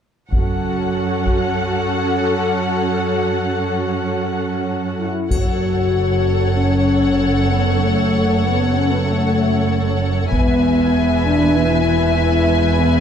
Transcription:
0.32 double bass section F#1, cello section F#2, viola section C#4 F#4, violin section A4 F#5, taiko
1.26 taiko
4.99 french horn section E4
5.30 double bass section F#1, cello section F#2, french horn section F#4, viola section A4, violin section C#5 F#5, taiko, triangle
6.56 french horn section C#4
7.49 french horn section B3
7.82 french horn section A3
8.44 french horn section B3
8.76 french horn section C#4
8.91 french horn section B3
9.06 french horn section A3
10.30 double bass section E1, cello section E2, french horn section B3, viola section B4, violin section E5 G#5, taiko
11.25 french horn section D4
11.57 french horn section E4
12.19 french horn section E4
12.80 french horn section B3

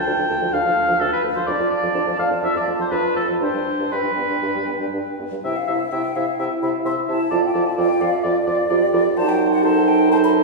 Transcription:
Already playing: clarinet F4, oboe G5, flute A5
0.06 bassoon D2, french horn D4
0.18 bassoon D2, french horn F3
0.29 bassoon D2, french horn A3
0.41 bassoon D2, french horn F3
0.53 bassoon D2, french horn D4, oboe F5
0.65 bassoon D2, french horn F3
0.77 bassoon D2, french horn A3
0.88 bassoon D2, french horn F3
1.00 bassoon D2, french horn D4, oboe A4
1.12 oboe B4
1.24 bassoon D2, french horn A3
1.35 bassoon D2, french horn F3, oboe C5
1.46 bassoon F2, french horn D4, clarinet F4, oboe D5, flute A5
1.60 bassoon F2, french horn F3
1.70 oboe D5
1.83 bassoon F2, french horn F3
1.94 bassoon F2, french horn D4
2.07 bassoon F2, french horn F3
2.18 bassoon F2, french horn A3, oboe F5
2.30 bassoon F2, french horn F3
2.42 bassoon F2, french horn D4, oboe E5
2.55 bassoon F2, french horn F3, oboe D5
2.67 bassoon F2, french horn A3
2.79 bassoon F2, french horn F3, oboe C5
2.91 bassoon F2, french horn D4, oboe B4
3.16 bassoon F2, french horn A3, oboe A4
3.28 bassoon F2, french horn F3
3.41 bassoon G2, french horn D4, clarinet D4, oboe C5, flute G5
3.54 bassoon G2, french horn G3
3.79 bassoon G2, french horn G3
3.92 bassoon G2, french horn D4, oboe B4
4.04 bassoon G2, french horn G3
4.17 bassoon G2, french horn B3
4.30 bassoon G2, french horn G3
4.42 bassoon G2, french horn D4
4.55 bassoon G2, french horn G3
4.68 bassoon G2, french horn B3
4.80 bassoon G2, french horn G3
4.93 bassoon G2, french horn D4
5.19 bassoon G2, french horn B3
5.31 bassoon G2, french horn G3
5.44 bassoon C3, clarinet E4, oboe E5, flute G5
5.56 flute F5
5.67 bassoon C3, clarinet E4, oboe E5
5.80 flute E5
5.92 bassoon C3, clarinet E4, oboe E5, flute G5
6.16 bassoon C3, clarinet E4, oboe E5, flute F5
6.38 bassoon C3, french horn E4, clarinet E4, oboe E5, flute G5
6.62 bassoon C3, clarinet E4, oboe E5, flute B5
6.85 bassoon C3, clarinet E4, oboe E5, flute C6
7.08 bassoon C3, clarinet E4, oboe E5, flute A5
7.30 bassoon F2, french horn F4, clarinet F4, oboe D5
7.45 flute G5
7.53 bassoon F2, clarinet F4, oboe D5
7.67 flute A5
7.77 bassoon F2, clarinet F4, oboe D5, flute G5
8.00 bassoon F2, clarinet F4, oboe D5, flute F5
8.13 flute E5
8.23 bassoon F2, clarinet F4, oboe D5, flute D5
8.46 bassoon F2, clarinet F4, oboe D5
8.70 bassoon F2, clarinet F4, french horn G4, oboe D5
8.93 bassoon F2, clarinet F4, oboe D5
9.17 bassoon F#2, clarinet D#4, french horn F#4, oboe C5, flute A5
9.29 flute G5
9.53 flute F#5
9.64 clarinet D#4, french horn A4, oboe C5, flute A5
9.88 flute G5
10.11 clarinet D#4, french horn A4, oboe C5, flute A5
10.24 flute B5

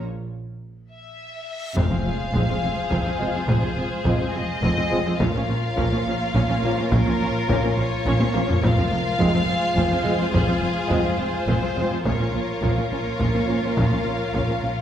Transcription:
0.06 reverse cymbal
0.92 violin section E5
1.76 double bass section F1, cello section F2, timpani F2, viola section F3 C4, string section G#3 F4 C5 F5, violin section G#4 C5 F5, taiko, impact
1.91 cello section F2, viola section F3 C4
2.05 double bass section F1, cello section F2, viola section F3 C4
2.33 double bass section F1, cello section F2, trombone section F3 G#3, viola section F3 C4, french horn section C4 F4, taiko
2.48 cello section F2, viola section F3 C4
2.62 double bass section F1, cello section F2, viola section F3 C4
2.90 double bass section F1, cello section F2, viola section F3 C4, taiko
3.04 cello section F2, viola section F3 C4
3.17 double bass section F1, cello section F2, trombone section F3 G#3, viola section F3 C4, french horn section F4
3.21 french horn section C4
3.33 cello section F2, viola section F3 C4
3.47 double bass section F1, cello section F2, viola section F3 C4, violin section G#4, taiko
3.62 cello section F2, viola section F3 C4
3.76 double bass section F1, cello section F2, viola section F3 C4
4.03 double bass section F1, cello section F2, viola section F3 C4, trombone section F3 G#3, french horn section C4 F4, taiko
4.19 cello section F2, viola section F3 C4
4.33 double bass section F1, cello section F2, viola section F3 C4, violin section D#5
4.63 double bass section F1, cello section F2, viola section F3 C4, taiko
4.77 cello section F2, viola section F3 C4
4.90 double bass section F1, cello section F2, trombone section F3 G#3, viola section F3 C4, french horn section C4 F4
5.05 cello section F2, viola section F3 C4
5.18 double bass section A#1, cello section A#2, viola section F3 C#4, string section A#3 F4 C#5 F5, violin section F4 A#4 F5, taiko
5.34 cello section A#2, viola section F3 C#4
5.48 double bass section A#1, cello section A#2, viola section F3 C#4
5.75 double bass section A#1, cello section A#2, viola section F3 C#4, trombone section F3 A#3, french horn section C#4 F4, taiko
5.92 cello section A#2, viola section F3 C#4
6.05 double bass section A#1, cello section A#2, viola section F3 C#4
6.34 double bass section A#1, cello section A#2, viola section F3 C#4, taiko
6.49 cello section A#2, viola section F3 C#4
6.62 double bass section A#1, cello section A#2, trombone section F3 A#3, viola section F3 C#4, french horn section C#4 F4
6.77 cello section A#2, viola section F3 C#4
6.90 double bass section A#1, cello section A#2, viola section F3 C#4, violin section A#4, taiko
7.06 cello section A#2, viola section F3 C#4
7.20 double bass section A#1, cello section A#2, viola section F3 C#4
7.48 double bass section A#1, cello section A#2, trombone section F3 A#3, viola section F3 C#4, french horn section C#4 F4, taiko
7.63 cello section A#2, viola section F3 C#4
7.76 double bass section A#1, cello section A#2, viola section F3 C#4, violin section C#5
8.05 double bass section A#1, cello section A#2, viola section F3 C#4, taiko
8.19 cello section A#2, viola section F3 C#4, taiko high
8.33 double bass section A#1, cello section A#2, trombone section F3 A#3, viola section F3 C#4, french horn section C#4 F4, taiko high
8.48 cello section A#2, viola section F3 C#4, taiko low
8.61 double bass section F1, cello section F2, timpani F2, viola section F3 C4, string section G#3 F4 C5 F5, violin section F4 F5, taiko
8.77 cello section F2, viola section F3 C4
8.90 double bass section F1, cello section F2, viola section F3 C4
9.18 double bass section F1, cello section F2, viola section F3 C4, trombone section F3 G#3, french horn section C4 F4, taiko
9.32 cello section F2, viola section F3 C4
9.47 double bass section F1, cello section F2, viola section F3 C4, violin section G#4
9.75 double bass section F1, cello section F2, viola section F3 C4, taiko
9.90 cello section F2, viola section F3 C4
10.03 double bass section F1, cello section F2, trombone section F3 G#3, viola section F3 C4, french horn section C4 F4
10.17 cello section F2, viola section F3 C4
10.31 double bass section F1, cello section F2, viola section F3 C4, violin section G#4, taiko
10.46 cello section F2, viola section F3 C4
10.60 double bass section F1, cello section F2, viola section F3 C4
10.88 double bass section F1, cello section F2, trombone section F3 G#3, viola section F3 C4, taiko
10.93 french horn section C4 F4
11.04 cello section F2, viola section F3 C4
11.18 double bass section F1, cello section F2, viola section F3 C4, violin section C5
11.47 double bass section F1, cello section F2, viola section F3 C4, taiko
11.61 cello section F2, viola section F3 C4
11.75 double bass section F1, cello section F2, trombone section F3 G#3, viola section F3 C4, french horn section C4 F4
11.90 cello section F2, viola section F3 C4
12.04 double bass section A#1, cello section A#2, viola section F3 C#4, string section A#3 F4 C#5 F5, violin section F4 A#4 C#5, taiko
12.19 cello section A#2, viola section F3 C#4
12.33 double bass section A#1, cello section A#2, viola section F3 C#4
12.61 double bass section A#1, cello section A#2, trombone section F3 A#3, viola section F3 C#4, french horn section C#4 F4, taiko
12.76 cello section A#2, viola section F3 C#4
12.91 double bass section A#1, cello section A#2, viola section F3 C#4, violin section C#5
13.19 double bass section A#1, cello section A#2, viola section F3 C#4, taiko
13.33 cello section A#2, viola section F3 C#4
13.46 double bass section A#1, cello section A#2, trombone section F3 A#3, viola section F3 C#4, french horn section C#4 F4
13.62 cello section A#2, viola section F3 C#4
13.76 double bass section A#1, cello section A#2, viola section F3 C#4, violin section F5, taiko
13.90 cello section A#2, viola section F3 C#4
14.05 double bass section A#1, cello section A#2, viola section F3 C#4
14.33 double bass section A#1, cello section A#2, trombone section F3 A#3, viola section F3 C#4, french horn section C#4 F4, taiko
14.47 cello section A#2, viola section F3 C#4
14.62 double bass section A#1, cello section A#2, viola section F3 C#4

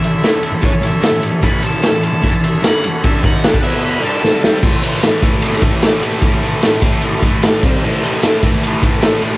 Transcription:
Already playing: transistor combo organ C#4 E4 A4
0.01 muted distorted electric guitar stroke, ride
0.06 lead electric guitar E5
0.23 distorted electric guitar A3 E4, snare, ride
0.32 muted distorted electric guitar stroke
0.43 lead electric guitar E5, ride
0.52 muted distorted electric guitar stroke
0.61 distorted electric guitar A2 E3, kick, ride
0.65 lead electric guitar C#5
0.71 muted distorted electric guitar stroke
0.82 distorted electric guitar A2 E3, lead electric guitar E5, ride
0.92 muted distorted electric guitar stroke
1.01 distorted electric guitar D3 A3, snare, ride
1.12 distorted electric guitar A2 E3
1.21 distorted electric guitar A2 E3, ride
1.32 muted distorted electric guitar stroke
1.41 distorted electric guitar A2 E3 A3, transistor combo organ C#4 E4 A4, lead electric guitar B5, kick, ride
1.63 distorted electric guitar A2 E3, lead electric guitar A5, ride
1.71 distorted electric guitar A2 E3
1.82 distorted electric guitar C3 G3, snare, ride
1.91 distorted electric guitar A2 E3
2.03 lead electric guitar A5, ride
2.13 muted distorted electric guitar stroke
2.21 distorted electric guitar A2 E3, kick, ride
2.31 muted distorted electric guitar stroke
2.44 lead electric guitar E5, ride
2.62 distorted electric guitar G2 D3 G3, lead electric guitar F#5, snare, ride
2.83 muted distorted electric guitar stroke, ride
3.03 distorted electric guitar G2 D3 G3, lead electric guitar E5, kick, ride
3.23 distorted electric guitar D#3 A#3 D#4, lead electric guitar F#5, kick, ride
3.44 snare, ride
3.53 distorted electric guitar G3 D4, kick
3.62 distorted electric guitar E3 B3 E4, transistor combo organ B3 E4 B4, lead electric guitar E5, crash
3.84 lead electric guitar B5
4.01 distorted electric guitar G3 D4 G4, transistor combo organ E4 A4, lead electric guitar A5
4.21 distorted electric guitar A2 E3, snare
4.33 distorted electric guitar C3 G3 C4
4.44 snare
4.62 distorted electric guitar A2 E3 A3, kick, crash
4.82 distorted electric guitar A2 E3 A3, ride
5.02 distorted electric guitar A2 E3 A3, snare, ride
5.21 distorted electric guitar A2 E3 A3, kick, ride
5.42 distorted electric guitar A2 E3 A3, ride
5.53 snare
5.62 distorted electric guitar A2 E3 A3, kick, ride
5.82 distorted electric guitar A2 E3 A3, snare, ride
6.02 distorted electric guitar A2 E3 A3, ride
6.22 distorted electric guitar A2 E3 A3, kick, ride
6.43 distorted electric guitar A2 E3 A3, ride
6.62 distorted electric guitar A2 E3 A3, snare, ride
6.82 distorted electric guitar A2 E3 A3, kick, ride
7.02 distorted electric guitar A2 E3 A3, ride
7.22 distorted electric guitar A2 E3 A3, kick, ride
7.43 distorted electric guitar A2 E3 A3, snare, ride
7.63 distorted electric guitar C3 G3 C4, kick, crash
7.84 distorted electric guitar A2 E3 A3
8.03 distorted electric guitar A2 E3 A3, ride
8.23 distorted electric guitar A2 E3 A3, snare, ride
8.43 distorted electric guitar A2 E3 A3, kick, ride
8.63 distorted electric guitar A2 E3 A3, ride
8.83 distorted electric guitar A2 E3 A3, kick, ride
9.00 distorted electric guitar A2 E3 A3, snare, ride
9.20 distorted electric guitar A2 E3 A3, ride

